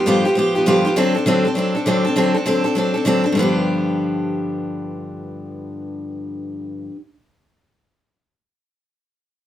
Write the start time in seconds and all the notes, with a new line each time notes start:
0.06 G2 D3 F3 B3 F4 G4
0.25 F3 B3 F4 G4
0.35 F3 B3 F4 G4
0.55 F3 B3 F4 G4
0.66 G2 D3 F3 B3 F4 G4
0.85 F3 B3 F4 G4
0.96 D3 F#3 C4 D4 A4
1.15 C4 D4 A4
1.26 D3 F#3 C4 D4 A4
1.45 C4 D4 A4
1.55 F#3 C4 D4 A4
1.75 C4 D4 A4
1.86 D3 F#3 C4 D4 A4
2.05 C4 D4 A4
2.16 D3 F#3 C4 D4 A4
2.34 C4 D4 A4
2.46 D3 F#3 C4 D4 A4
2.64 C4 D4 A4
2.75 F#3 C4 D4 A4
2.94 C4 D4 A4
3.05 D3 F#3 C4 D4 A4
3.24 C4 D4 A4
3.32 G2 D3
3.37 F3 B3 D4
3.42 G4